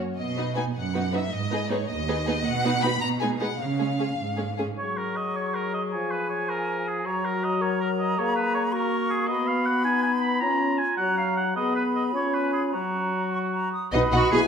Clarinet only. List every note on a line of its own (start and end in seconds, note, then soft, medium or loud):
4.78 7.07 G#4 soft
7.06 7.62 F#4 soft
7.61 8.17 A#4 soft
8.17 8.75 G#4 soft
8.73 9.28 F#4 medium
9.29 9.87 F#4 soft
9.85 10.43 D#4 medium
10.42 10.99 F4 soft
10.98 11.39 F#4 soft
11.56 12.14 G#4 soft
12.13 12.75 F4 soft
12.73 13.73 F#4 soft
13.93 14.47 B4 soft